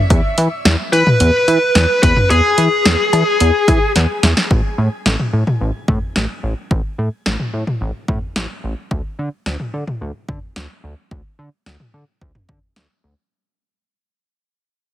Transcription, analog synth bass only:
0.10 0.21 E2 loud
0.38 0.48 E3 loud
0.65 0.76 E2 loud
0.93 1.03 E3 loud
1.20 1.31 E2 loud
1.48 1.58 E3 loud
1.75 1.86 E2 loud
2.03 2.13 E2 loud
2.30 2.41 E2 loud
2.58 2.68 E3 loud
2.86 2.96 E2 loud
3.13 3.23 E3 loud
3.41 3.51 E2 loud
3.68 3.78 E3 loud
3.96 4.06 E2 loud
4.23 4.34 E2 loud
4.51 4.61 A1 loud
4.78 4.89 A2 loud
5.06 5.16 A1 loud
5.33 5.44 A2 medium
5.61 5.71 A1 loud
5.88 5.99 A2 loud
6.16 6.26 A1 loud
6.43 6.54 A1 loud
6.71 6.81 A1 loud
6.98 7.09 A2 loud
7.26 7.36 A1 loud
7.54 7.64 A2 medium
7.81 7.91 A1 loud
8.08 8.19 A2 medium
8.36 8.47 A1 medium
8.64 8.74 A1 loud
8.91 9.01 D2 loud
9.19 9.29 D3 loud
9.46 9.57 D2 loud
9.74 9.84 D3 medium
10.01 10.12 D2 loud
10.29 10.39 D3 medium
10.56 10.67 D2 loud
10.84 10.94 D2 loud
11.11 11.22 D2 loud
11.39 11.49 D3 loud
11.66 11.77 D2 medium
11.94 12.04 D3 medium
12.21 12.32 D2 loud
12.49 12.59 D3 medium
12.76 12.87 D2 loud
13.04 13.14 D2 loud

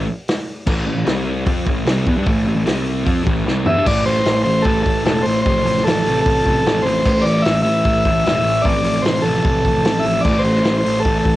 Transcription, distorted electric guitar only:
0.66 0.85 A2 medium
0.66 0.85 E3 medium
0.66 0.86 A3 loud
0.86 0.94 A2 medium
0.86 0.94 E3 medium
0.95 1.04 A2 medium
0.95 1.05 E3 medium
1.04 1.45 C3 medium
1.04 1.45 G3 loud
1.04 1.45 C4 loud
1.46 1.65 F3 loud
1.46 1.66 C4 loud
1.46 1.66 F4 medium
1.66 1.86 A2 medium
1.66 1.86 E3 loud
1.66 1.86 A3 loud
1.87 2.06 C3 loud
1.87 2.06 G3 medium
1.87 2.06 C4 loud
2.09 2.17 E3 medium
2.09 2.17 B3 loud
2.17 2.26 G3 medium
2.17 2.26 D4 loud
2.28 2.46 A2 medium
2.28 2.47 E3 medium
2.28 2.47 A3 loud
2.49 2.55 A2 medium
2.49 2.56 E3 medium
2.56 2.65 A2 medium
2.56 2.66 E3 medium
2.65 3.03 C3 loud
2.65 3.05 G3 loud
2.65 3.04 C4 loud
3.04 3.23 F3 loud
3.04 3.24 C4 loud
3.04 3.24 F4 loud
3.24 3.44 A2 medium
3.24 3.44 E3 medium
3.24 3.45 A3 loud
3.45 3.65 C3 loud
3.45 3.65 G3 loud
3.45 3.66 C4 medium
3.65 3.75 E3 medium
3.65 3.75 B3 loud
3.75 3.85 G3 medium
3.75 3.85 D4 loud
3.84 4.47 A2 loud
3.84 4.44 E3 medium
3.84 4.44 A3 medium
4.45 5.05 A2 medium
4.45 5.05 E3 medium
4.45 5.09 A3 medium
5.05 5.48 A2 medium
5.05 5.45 E3 medium
5.09 7.07 A3 medium
5.46 6.04 F2 medium
5.46 6.05 C3 medium
5.46 6.05 F3 medium
6.06 6.64 F2 medium
6.06 6.66 C3 medium
6.06 6.64 F3 medium
6.65 7.04 F2 medium
6.65 7.03 C3 medium
6.65 7.05 F3 loud
7.04 7.66 A2 medium
7.04 7.63 E3 loud
7.04 7.62 A3 loud
7.63 8.24 A2 medium
7.63 8.23 E3 medium
7.63 8.28 A3 medium
8.24 8.64 A2 medium
8.24 8.65 E3 medium
8.29 10.28 A3 loud
8.63 9.23 F2 medium
8.63 9.23 C3 medium
8.67 9.22 F3 loud
9.23 9.84 C3 medium
9.23 9.83 F3 medium
9.28 9.84 F2 medium
9.85 10.23 F2 medium
9.85 10.24 C3 loud
9.85 10.25 F3 medium
10.25 10.86 A2 medium
10.25 10.84 E3 loud
10.25 10.83 A3 medium
10.84 11.36 A2 medium
10.84 11.36 E3 medium
10.84 11.36 A3 medium

